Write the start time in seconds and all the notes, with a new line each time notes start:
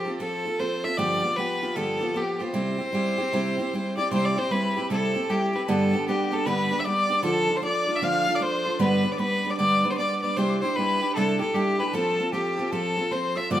Already playing: G4
0.05 C4 F4 A4
0.20 F3 C4 F4 A4
0.45 C4 F4 A4
0.59 F3 C4 F4 A4 C5
0.84 C4 F4 A4 E5
0.97 G2 D3 F3 B3 F4 G4 D5
1.23 F3 B3 F4 G4
1.37 F3 B3 F4 G4 B4
1.62 F3 B3 F4 G4
1.76 G2 D3 F3 B3 F4 G4 A4
2.01 F3 B3 F4 G4
2.14 F3 B3 F4 G4
2.39 F3 B3 F4 G4 C5
2.54 C3 G3 C4 E4 G4
2.78 C4 E4 G4
2.93 G3 C4 E4 G4
3.18 C4 E4 G4
3.33 C3 G3 C4 E4 G4
3.58 C4 E4 G4
3.73 G3 C4 E4 G4
3.97 C4 E4 G4 D5 D6
4.11 C3 G3 C4 E4 G4 C5 C6
4.25 D5
4.36 C4 E4 G4 C5 C6
4.50 G3 C4 E4 G4 B4 B5
4.76 C4 E4 G4
4.90 C3 G3 C4 E4 G4 A4 A5
5.14 C4 E4 G4
5.30 G3 C4 E4 G4 G5
5.53 C4 E4 G4 B4
5.65 G2 D3 G3 B3 D4 B4 A5
5.69 G4 A4
5.93 G3 B3 D4 G4
6.07 G3 B3 D4 G4 G5
6.31 G3 B3 D4 G4 A4 A5
6.46 G2 D3 G3 B3 D4 G4 B4 B5
6.71 G3 B3 D4 G4
6.79 E5 E6
6.84 G3 B3 D4 G4 D5 D6
7.09 G3 B3 D4 G4
7.23 D3 F3 D4 F4 A4 A5
7.47 D4 F4 A4
7.55 C5 C6
7.62 F3 D4 F4 A4 D5 D6
7.87 D4 F4 A4
7.96 E5 E6
8.02 D3 F3 D4 F4 A4 F5 F6
8.26 D4 F4 A4
8.35 D5 D6
8.39 F3 D4 F4 A4 C5 C6
8.65 D4 F4 A4
8.79 G2 D3 G3 B3 D4 B4 B5
9.04 G3 B3 D4 B4
9.12 D5 D6
9.18 G3 B3 D4 B4 B5
9.44 G3 B3 D4 B4
9.50 D5 D6
9.57 G2 D3 G3 B3 D4 B4 D5 D6
9.84 G3 B3 D4 B4
9.90 C5 C6
9.97 G3 B3 D4 B4 D5 D6
10.21 G3 B3 D4 B4 D5 D6
10.36 C3 G3 D4 E4 G4 C5 C6
10.50 D6
10.61 D4 E4 G4 C5 C6
10.75 G3 D4 E4 G4 B4 B5
11.01 D4 E4 G4
11.15 C3 G3 D4 E4 G4 A4 A5
11.39 D4 E4 G4 A4
11.54 G3 D4 E4 G4 G5
11.79 D4 E4 G4 B4 B5
11.87 G5
11.92 F3 C4 F4 A4 A5
12.19 C4 F4 A4
12.32 F3 C4 F4 G4 A4 G5
12.57 C4 F4 A4
12.67 G4
12.71 F3 C4 F4 A4 A5
12.96 C4 F4 A4
13.11 F3 C4 F4 A4 C5 C6
13.35 C4 F4 A4 E5 E6
13.50 G2 D3 F3 B3 F4 G4 D5 D6